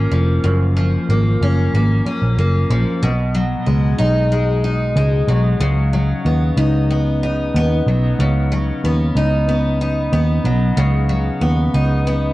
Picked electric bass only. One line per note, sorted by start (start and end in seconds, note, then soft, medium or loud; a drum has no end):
0.12 0.38 F1 medium
0.44 0.96 F#1 loud
1.09 1.35 G#1 medium
1.41 1.67 F#1 medium
1.74 1.99 G#1 medium
2.06 muted picked electric bass stroke soft
2.22 2.35 A#1 medium
2.37 2.63 F#1 medium
2.70 2.83 A#1 loud
3.03 3.54 B1 loud
3.67 3.93 C#2 medium
4.00 4.92 B1 medium
4.96 5.22 C#2 medium
5.28 5.54 B1 loud
5.60 6.12 C#2 medium
6.25 6.51 D#2 medium
6.57 7.50 C#2 medium
7.54 7.80 D#2 medium
7.86 8.12 B1 loud
8.19 8.70 C#2 loud
8.84 9.09 D#2 medium
9.15 10.08 C#2 medium
10.13 10.38 D#2 medium
10.44 10.70 B1 medium
10.77 11.28 C#2 loud
11.41 11.67 D#2 medium
11.74 12.33 C#2 medium